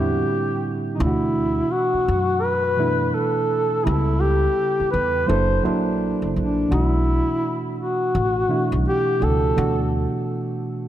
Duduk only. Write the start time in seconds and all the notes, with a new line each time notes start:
Already playing: G4
0.95 D#4
1.01 E4
1.71 F#4
2.43 B4
3.11 A4 B4
3.85 E4
4.21 G4
4.91 B4
5.29 C5
5.66 D4
6.38 D4
6.73 E4
7.79 F#4
8.88 G4
9.24 A4